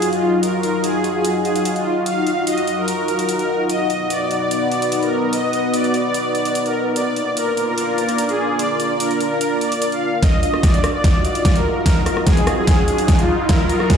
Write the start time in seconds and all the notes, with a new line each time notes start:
Already playing: F#3 D#4 F4 F#4 D#5 F5, downlifter
0.02 closed hi-hat
0.13 F4, closed hi-hat
0.43 A#4, closed hi-hat
0.63 A#4, closed hi-hat
0.84 G#4, closed hi-hat
1.04 closed hi-hat
1.15 G#4
1.25 closed hi-hat
1.45 G#4, closed hi-hat
1.56 closed hi-hat
1.65 closed hi-hat
1.76 F4, closed hi-hat
2.06 F5, closed hi-hat
2.27 F5, closed hi-hat
2.47 D#5, closed hi-hat
2.58 closed hi-hat
2.67 closed hi-hat
2.78 A#4
2.88 closed hi-hat
3.08 A#4, closed hi-hat
3.19 closed hi-hat
3.29 closed hi-hat
3.39 A#4, closed hi-hat
3.69 B3 D#5, closed hi-hat
3.74 B4
3.90 D#5, closed hi-hat
4.10 D5, closed hi-hat
4.18 F#5
4.31 closed hi-hat
4.41 D5
4.51 closed hi-hat
4.72 D5, closed hi-hat
4.82 closed hi-hat
4.92 closed hi-hat
5.03 A#4, closed hi-hat
5.33 D#5, closed hi-hat
5.53 D#5, closed hi-hat
5.73 D5, closed hi-hat
5.84 closed hi-hat
5.94 closed hi-hat
6.04 D5
6.14 closed hi-hat
6.35 D5, closed hi-hat
6.45 closed hi-hat
6.55 closed hi-hat
6.66 A#4, closed hi-hat
6.96 A#3 D4 F4 D5, closed hi-hat
7.11 A#4 F5
7.16 D5, closed hi-hat
7.37 A#4, closed hi-hat
7.57 closed hi-hat
7.68 A#4
7.78 closed hi-hat
7.98 A#4, closed hi-hat
8.09 closed hi-hat
8.18 closed hi-hat
8.29 G#4, closed hi-hat
8.59 D5, closed hi-hat
8.80 D5, closed hi-hat
9.00 A#4, closed hi-hat
9.11 closed hi-hat
9.20 closed hi-hat
9.31 A#4
9.41 closed hi-hat
9.61 D5, closed hi-hat
9.72 closed hi-hat
9.82 closed hi-hat
9.92 F5, closed hi-hat
10.22 D#4 F4 F#4 D#5, kick, snare, closed hi-hat, riser
10.36 F#3
10.43 D#5, closed hi-hat
10.54 cross-stick
10.63 D5, kick, snare, closed hi-hat
10.74 closed hi-hat
10.84 cross-stick, closed hi-hat
10.94 D5
11.04 kick, snare, closed hi-hat
11.25 D5, closed hi-hat
11.35 closed hi-hat
11.45 kick, snare, closed hi-hat
11.56 A#4, closed hi-hat
11.86 A#4, kick, snare, closed hi-hat
12.06 A#4, cross-stick, closed hi-hat
12.17 cross-stick
12.27 G#4, kick, snare, closed hi-hat
12.37 closed hi-hat
12.47 cross-stick, closed hi-hat
12.58 G#4
12.67 kick, snare, closed hi-hat
12.88 G#4, closed hi-hat
12.98 closed hi-hat
13.08 kick, snare, closed hi-hat
13.19 F4, closed hi-hat
13.49 A#4, kick, snare, closed hi-hat
13.69 A#4, closed hi-hat
13.80 cross-stick
13.90 G#4, kick, snare, closed hi-hat